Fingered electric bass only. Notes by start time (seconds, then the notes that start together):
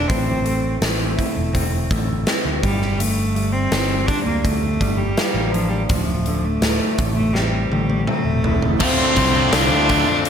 0.10 A1
0.81 A1
1.36 E1
1.91 A1
2.45 D2
2.63 G1
3.72 G1
4.26 D2
4.81 G1
5.34 A1
5.90 D1
6.61 D1
6.99 A1
7.70 A1
8.25 E1
8.81 D1
9.17 C2
9.52 C2
9.69 D2